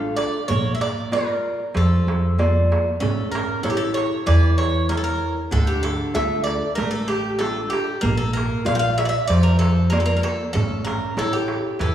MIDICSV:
0, 0, Header, 1, 5, 480
1, 0, Start_track
1, 0, Tempo, 628272
1, 375, Time_signature, 4, 2, 24, 8
1, 9128, End_track
2, 0, Start_track
2, 0, Title_t, "Bouzouki"
2, 0, Program_c, 0, 25
2, 0, Note_on_c, 0, 77, 96
2, 123, Note_off_c, 0, 77, 0
2, 126, Note_on_c, 0, 74, 94
2, 353, Note_off_c, 0, 74, 0
2, 367, Note_on_c, 0, 73, 95
2, 564, Note_off_c, 0, 73, 0
2, 570, Note_on_c, 0, 76, 71
2, 617, Note_off_c, 0, 76, 0
2, 620, Note_on_c, 0, 74, 83
2, 841, Note_off_c, 0, 74, 0
2, 864, Note_on_c, 0, 70, 84
2, 1310, Note_off_c, 0, 70, 0
2, 1351, Note_on_c, 0, 69, 76
2, 2033, Note_off_c, 0, 69, 0
2, 2294, Note_on_c, 0, 69, 84
2, 2519, Note_off_c, 0, 69, 0
2, 2533, Note_on_c, 0, 70, 75
2, 2758, Note_off_c, 0, 70, 0
2, 2776, Note_on_c, 0, 69, 83
2, 2826, Note_off_c, 0, 69, 0
2, 2826, Note_on_c, 0, 67, 70
2, 2879, Note_on_c, 0, 69, 82
2, 2882, Note_off_c, 0, 67, 0
2, 3006, Note_off_c, 0, 69, 0
2, 3011, Note_on_c, 0, 73, 88
2, 3257, Note_off_c, 0, 73, 0
2, 3260, Note_on_c, 0, 74, 92
2, 3495, Note_off_c, 0, 74, 0
2, 3498, Note_on_c, 0, 73, 82
2, 3734, Note_off_c, 0, 73, 0
2, 3737, Note_on_c, 0, 70, 81
2, 3787, Note_off_c, 0, 70, 0
2, 3800, Note_on_c, 0, 69, 73
2, 3846, Note_off_c, 0, 69, 0
2, 3849, Note_on_c, 0, 70, 87
2, 4082, Note_off_c, 0, 70, 0
2, 4219, Note_on_c, 0, 69, 97
2, 4333, Note_on_c, 0, 67, 83
2, 4342, Note_off_c, 0, 69, 0
2, 4453, Note_on_c, 0, 69, 83
2, 4459, Note_off_c, 0, 67, 0
2, 4694, Note_off_c, 0, 69, 0
2, 4697, Note_on_c, 0, 76, 93
2, 4914, Note_off_c, 0, 76, 0
2, 4917, Note_on_c, 0, 74, 92
2, 5150, Note_off_c, 0, 74, 0
2, 5159, Note_on_c, 0, 70, 88
2, 5274, Note_off_c, 0, 70, 0
2, 5277, Note_on_c, 0, 69, 87
2, 5399, Note_off_c, 0, 69, 0
2, 5407, Note_on_c, 0, 67, 81
2, 5643, Note_on_c, 0, 69, 87
2, 5660, Note_off_c, 0, 67, 0
2, 5873, Note_off_c, 0, 69, 0
2, 5881, Note_on_c, 0, 67, 87
2, 6120, Note_on_c, 0, 70, 93
2, 6137, Note_off_c, 0, 67, 0
2, 6242, Note_off_c, 0, 70, 0
2, 6245, Note_on_c, 0, 69, 86
2, 6364, Note_off_c, 0, 69, 0
2, 6367, Note_on_c, 0, 70, 84
2, 6595, Note_off_c, 0, 70, 0
2, 6616, Note_on_c, 0, 77, 104
2, 6667, Note_off_c, 0, 77, 0
2, 6686, Note_on_c, 0, 79, 86
2, 6715, Note_off_c, 0, 79, 0
2, 6718, Note_on_c, 0, 77, 99
2, 6845, Note_off_c, 0, 77, 0
2, 6858, Note_on_c, 0, 76, 100
2, 6907, Note_off_c, 0, 76, 0
2, 6917, Note_on_c, 0, 74, 80
2, 6941, Note_off_c, 0, 74, 0
2, 6944, Note_on_c, 0, 76, 92
2, 7078, Note_off_c, 0, 76, 0
2, 7086, Note_on_c, 0, 74, 105
2, 7203, Note_off_c, 0, 74, 0
2, 7205, Note_on_c, 0, 70, 93
2, 7322, Note_off_c, 0, 70, 0
2, 7325, Note_on_c, 0, 69, 88
2, 7555, Note_off_c, 0, 69, 0
2, 7562, Note_on_c, 0, 70, 93
2, 7625, Note_off_c, 0, 70, 0
2, 7639, Note_on_c, 0, 69, 73
2, 7680, Note_off_c, 0, 69, 0
2, 7683, Note_on_c, 0, 70, 94
2, 7757, Note_off_c, 0, 70, 0
2, 7766, Note_on_c, 0, 70, 62
2, 7815, Note_off_c, 0, 70, 0
2, 7818, Note_on_c, 0, 69, 86
2, 8036, Note_off_c, 0, 69, 0
2, 8045, Note_on_c, 0, 69, 100
2, 8286, Note_on_c, 0, 70, 81
2, 8299, Note_off_c, 0, 69, 0
2, 8540, Note_off_c, 0, 70, 0
2, 8546, Note_on_c, 0, 69, 86
2, 8656, Note_on_c, 0, 67, 82
2, 8666, Note_off_c, 0, 69, 0
2, 8992, Note_off_c, 0, 67, 0
2, 9022, Note_on_c, 0, 69, 82
2, 9128, Note_off_c, 0, 69, 0
2, 9128, End_track
3, 0, Start_track
3, 0, Title_t, "Nylon-string guitar"
3, 0, Program_c, 1, 24
3, 0, Note_on_c, 1, 62, 51
3, 0, Note_on_c, 1, 65, 48
3, 0, Note_on_c, 1, 69, 59
3, 274, Note_off_c, 1, 62, 0
3, 276, Note_off_c, 1, 69, 0
3, 277, Note_off_c, 1, 65, 0
3, 369, Note_on_c, 1, 58, 60
3, 838, Note_off_c, 1, 58, 0
3, 854, Note_on_c, 1, 65, 50
3, 860, Note_on_c, 1, 74, 49
3, 863, Note_on_c, 1, 70, 43
3, 1239, Note_off_c, 1, 65, 0
3, 1243, Note_off_c, 1, 74, 0
3, 1245, Note_off_c, 1, 70, 0
3, 1332, Note_on_c, 1, 53, 66
3, 1800, Note_off_c, 1, 53, 0
3, 1821, Note_on_c, 1, 58, 43
3, 1826, Note_on_c, 1, 65, 51
3, 1827, Note_on_c, 1, 74, 56
3, 2205, Note_off_c, 1, 58, 0
3, 2205, Note_off_c, 1, 65, 0
3, 2207, Note_off_c, 1, 74, 0
3, 2294, Note_on_c, 1, 61, 62
3, 2761, Note_off_c, 1, 61, 0
3, 2775, Note_on_c, 1, 64, 49
3, 2780, Note_on_c, 1, 69, 46
3, 2784, Note_on_c, 1, 73, 54
3, 3162, Note_off_c, 1, 64, 0
3, 3162, Note_off_c, 1, 69, 0
3, 3163, Note_off_c, 1, 73, 0
3, 3256, Note_on_c, 1, 52, 68
3, 3723, Note_off_c, 1, 52, 0
3, 3735, Note_on_c, 1, 64, 53
3, 3739, Note_on_c, 1, 73, 58
3, 4120, Note_off_c, 1, 64, 0
3, 4123, Note_off_c, 1, 73, 0
3, 4211, Note_on_c, 1, 50, 67
3, 4680, Note_off_c, 1, 50, 0
3, 4692, Note_on_c, 1, 62, 49
3, 4694, Note_on_c, 1, 65, 43
3, 4696, Note_on_c, 1, 69, 59
3, 5078, Note_off_c, 1, 62, 0
3, 5079, Note_off_c, 1, 65, 0
3, 5081, Note_off_c, 1, 69, 0
3, 5174, Note_on_c, 1, 57, 71
3, 5642, Note_off_c, 1, 57, 0
3, 5653, Note_on_c, 1, 62, 50
3, 5655, Note_on_c, 1, 65, 46
3, 5659, Note_on_c, 1, 69, 57
3, 6039, Note_off_c, 1, 62, 0
3, 6039, Note_off_c, 1, 65, 0
3, 6043, Note_off_c, 1, 69, 0
3, 6130, Note_on_c, 1, 58, 66
3, 6600, Note_off_c, 1, 58, 0
3, 6607, Note_on_c, 1, 65, 49
3, 6614, Note_on_c, 1, 70, 49
3, 6614, Note_on_c, 1, 74, 59
3, 6996, Note_off_c, 1, 65, 0
3, 6998, Note_off_c, 1, 70, 0
3, 7000, Note_off_c, 1, 74, 0
3, 7096, Note_on_c, 1, 53, 69
3, 7563, Note_off_c, 1, 53, 0
3, 7575, Note_on_c, 1, 65, 49
3, 7576, Note_on_c, 1, 58, 47
3, 7586, Note_on_c, 1, 74, 56
3, 7960, Note_off_c, 1, 65, 0
3, 7962, Note_off_c, 1, 58, 0
3, 7967, Note_off_c, 1, 74, 0
3, 8059, Note_on_c, 1, 61, 62
3, 8524, Note_off_c, 1, 61, 0
3, 8533, Note_on_c, 1, 64, 49
3, 8537, Note_on_c, 1, 69, 46
3, 8539, Note_on_c, 1, 73, 55
3, 8921, Note_off_c, 1, 64, 0
3, 8921, Note_off_c, 1, 69, 0
3, 8923, Note_off_c, 1, 73, 0
3, 9009, Note_on_c, 1, 52, 65
3, 9128, Note_off_c, 1, 52, 0
3, 9128, End_track
4, 0, Start_track
4, 0, Title_t, "Upright bass"
4, 0, Program_c, 2, 32
4, 0, Note_on_c, 2, 33, 82
4, 158, Note_off_c, 2, 33, 0
4, 375, Note_on_c, 2, 34, 102
4, 543, Note_off_c, 2, 34, 0
4, 1339, Note_on_c, 2, 41, 89
4, 1506, Note_off_c, 2, 41, 0
4, 1582, Note_on_c, 2, 41, 69
4, 2085, Note_off_c, 2, 41, 0
4, 2298, Note_on_c, 2, 33, 89
4, 2634, Note_off_c, 2, 33, 0
4, 2778, Note_on_c, 2, 33, 85
4, 3114, Note_off_c, 2, 33, 0
4, 3266, Note_on_c, 2, 40, 87
4, 3935, Note_off_c, 2, 40, 0
4, 4217, Note_on_c, 2, 38, 92
4, 4554, Note_off_c, 2, 38, 0
4, 4694, Note_on_c, 2, 38, 89
4, 5031, Note_off_c, 2, 38, 0
4, 5179, Note_on_c, 2, 33, 86
4, 5850, Note_off_c, 2, 33, 0
4, 6134, Note_on_c, 2, 34, 96
4, 6471, Note_off_c, 2, 34, 0
4, 6618, Note_on_c, 2, 34, 90
4, 6954, Note_off_c, 2, 34, 0
4, 7099, Note_on_c, 2, 41, 84
4, 7771, Note_off_c, 2, 41, 0
4, 8052, Note_on_c, 2, 33, 93
4, 8391, Note_off_c, 2, 33, 0
4, 8532, Note_on_c, 2, 33, 85
4, 8871, Note_off_c, 2, 33, 0
4, 9012, Note_on_c, 2, 40, 87
4, 9128, Note_off_c, 2, 40, 0
4, 9128, End_track
5, 0, Start_track
5, 0, Title_t, "Darbuka"
5, 137, Note_on_c, 9, 63, 69
5, 214, Note_off_c, 9, 63, 0
5, 382, Note_on_c, 9, 64, 88
5, 458, Note_off_c, 9, 64, 0
5, 500, Note_on_c, 9, 63, 25
5, 576, Note_off_c, 9, 63, 0
5, 619, Note_on_c, 9, 63, 70
5, 695, Note_off_c, 9, 63, 0
5, 735, Note_on_c, 9, 63, 25
5, 811, Note_off_c, 9, 63, 0
5, 859, Note_on_c, 9, 63, 64
5, 935, Note_off_c, 9, 63, 0
5, 1220, Note_on_c, 9, 63, 25
5, 1297, Note_off_c, 9, 63, 0
5, 1336, Note_on_c, 9, 63, 64
5, 1412, Note_off_c, 9, 63, 0
5, 1466, Note_on_c, 9, 63, 27
5, 1543, Note_off_c, 9, 63, 0
5, 1591, Note_on_c, 9, 63, 69
5, 1667, Note_off_c, 9, 63, 0
5, 1829, Note_on_c, 9, 63, 67
5, 1905, Note_off_c, 9, 63, 0
5, 1952, Note_on_c, 9, 63, 24
5, 2029, Note_off_c, 9, 63, 0
5, 2078, Note_on_c, 9, 63, 72
5, 2154, Note_off_c, 9, 63, 0
5, 2311, Note_on_c, 9, 64, 94
5, 2387, Note_off_c, 9, 64, 0
5, 2445, Note_on_c, 9, 63, 27
5, 2522, Note_off_c, 9, 63, 0
5, 2560, Note_on_c, 9, 63, 81
5, 2637, Note_off_c, 9, 63, 0
5, 2791, Note_on_c, 9, 63, 70
5, 2868, Note_off_c, 9, 63, 0
5, 2921, Note_on_c, 9, 63, 26
5, 2998, Note_off_c, 9, 63, 0
5, 3035, Note_on_c, 9, 63, 62
5, 3111, Note_off_c, 9, 63, 0
5, 3271, Note_on_c, 9, 63, 66
5, 3348, Note_off_c, 9, 63, 0
5, 3389, Note_on_c, 9, 63, 28
5, 3466, Note_off_c, 9, 63, 0
5, 3507, Note_on_c, 9, 63, 61
5, 3583, Note_off_c, 9, 63, 0
5, 3755, Note_on_c, 9, 63, 60
5, 3832, Note_off_c, 9, 63, 0
5, 4106, Note_on_c, 9, 63, 26
5, 4183, Note_off_c, 9, 63, 0
5, 4224, Note_on_c, 9, 64, 82
5, 4300, Note_off_c, 9, 64, 0
5, 4351, Note_on_c, 9, 63, 26
5, 4427, Note_off_c, 9, 63, 0
5, 4465, Note_on_c, 9, 63, 68
5, 4541, Note_off_c, 9, 63, 0
5, 4707, Note_on_c, 9, 63, 64
5, 4783, Note_off_c, 9, 63, 0
5, 4821, Note_on_c, 9, 63, 23
5, 4898, Note_off_c, 9, 63, 0
5, 4943, Note_on_c, 9, 63, 64
5, 5019, Note_off_c, 9, 63, 0
5, 5183, Note_on_c, 9, 63, 64
5, 5259, Note_off_c, 9, 63, 0
5, 5302, Note_on_c, 9, 63, 27
5, 5378, Note_off_c, 9, 63, 0
5, 5412, Note_on_c, 9, 63, 65
5, 5488, Note_off_c, 9, 63, 0
5, 5658, Note_on_c, 9, 63, 69
5, 5734, Note_off_c, 9, 63, 0
5, 5906, Note_on_c, 9, 63, 69
5, 5983, Note_off_c, 9, 63, 0
5, 6031, Note_on_c, 9, 63, 29
5, 6107, Note_off_c, 9, 63, 0
5, 6150, Note_on_c, 9, 64, 89
5, 6226, Note_off_c, 9, 64, 0
5, 6282, Note_on_c, 9, 63, 29
5, 6358, Note_off_c, 9, 63, 0
5, 6395, Note_on_c, 9, 63, 76
5, 6471, Note_off_c, 9, 63, 0
5, 6633, Note_on_c, 9, 63, 67
5, 6710, Note_off_c, 9, 63, 0
5, 6752, Note_on_c, 9, 63, 26
5, 6829, Note_off_c, 9, 63, 0
5, 6863, Note_on_c, 9, 63, 65
5, 6940, Note_off_c, 9, 63, 0
5, 7107, Note_on_c, 9, 63, 67
5, 7183, Note_off_c, 9, 63, 0
5, 7227, Note_on_c, 9, 63, 29
5, 7304, Note_off_c, 9, 63, 0
5, 7344, Note_on_c, 9, 63, 66
5, 7420, Note_off_c, 9, 63, 0
5, 7583, Note_on_c, 9, 63, 69
5, 7660, Note_off_c, 9, 63, 0
5, 7824, Note_on_c, 9, 63, 68
5, 7900, Note_off_c, 9, 63, 0
5, 7950, Note_on_c, 9, 63, 29
5, 8026, Note_off_c, 9, 63, 0
5, 8062, Note_on_c, 9, 64, 96
5, 8139, Note_off_c, 9, 64, 0
5, 8304, Note_on_c, 9, 63, 75
5, 8380, Note_off_c, 9, 63, 0
5, 8420, Note_on_c, 9, 63, 27
5, 8496, Note_off_c, 9, 63, 0
5, 8539, Note_on_c, 9, 63, 72
5, 8616, Note_off_c, 9, 63, 0
5, 8658, Note_on_c, 9, 63, 26
5, 8734, Note_off_c, 9, 63, 0
5, 8771, Note_on_c, 9, 63, 66
5, 8848, Note_off_c, 9, 63, 0
5, 8898, Note_on_c, 9, 63, 26
5, 8974, Note_off_c, 9, 63, 0
5, 9018, Note_on_c, 9, 63, 68
5, 9018, Note_on_c, 9, 64, 64
5, 9095, Note_off_c, 9, 63, 0
5, 9095, Note_off_c, 9, 64, 0
5, 9128, End_track
0, 0, End_of_file